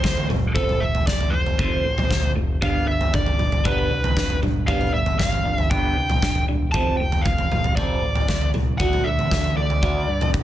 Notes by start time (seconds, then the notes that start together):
Already playing: C5
0.03 D2 F3 A3, kick, snare
0.17 floor tom
0.29 F1 F3 A3, mid tom
0.54 F1 F3 A3 C4 A4, kick, floor tom
0.69 mid tom
0.80 F1 F3 A3 E5
0.95 floor tom
1.07 F1 F3 A3 D5, kick, snare
1.21 floor tom
1.30 F1 F3 A3 C5
1.46 floor tom
1.58 F1 F3 A3 C4, kick
1.84 A1 F3 A3
1.98 floor tom, mid tom
2.09 D2 F3 A3, kick, snare
2.23 floor tom
2.35 F1 F3 A3
2.61 G1 G3 B3 D4 F5, kick, floor tom
2.85 G1 G3 D4 E5
3.01 floor tom
3.13 G1 G3 D4 D5, kick
3.26 floor tom
3.39 G1 G3 D4, mid tom
3.52 floor tom
3.64 G1 G3 B3 D4 B4, kick
3.90 C2 G3 D4
4.04 floor tom
4.16 F1 G3 D4, kick, snare
4.30 floor tom
4.42 G1 G3 D4, mid tom
4.67 G1 G3 B3 D4 F5, kick, floor tom
4.81 mid tom
4.93 G1 G3 D4 E5
5.06 floor tom
5.19 G1 G3 D4 F5, kick, snare
5.32 floor tom
5.44 G1 G3 D4
5.58 E5, floor tom
5.70 G1 G3 B3 D4 G5, kick
5.96 C2 G3 D4
6.10 floor tom, mid tom
6.22 F1 G3 D4, kick, snare
6.35 floor tom
6.48 E1 G3 D4
6.72 F1 F3 A3 C4 A5, kick, floor tom
6.97 F1 F3 A3 G5
7.12 floor tom
7.21 F1 F5
7.26 F3 A3, kick
7.38 floor tom
7.51 F1 F3 A3, mid tom
7.64 floor tom
7.76 F1 F3 A3 C4 D5, kick
8.02 A1 F3 A3
8.15 floor tom
8.28 D2 F3 A3, kick, snare
8.41 floor tom
8.54 C2 F3 A3, mid tom
8.78 D2 D3 D4 F#4 F#5, kick, floor tom
8.93 mid tom
9.04 D2 D3 D4 E5
9.19 floor tom
9.31 D2 D3 D4, kick, snare
9.44 floor tom
9.56 D2 D3 D4 D5
9.70 floor tom
9.82 D2 D3 D4 F#4, kick
10.08 G2 D3 D4
10.21 floor tom, mid tom
10.33 C2 D3 D4, kick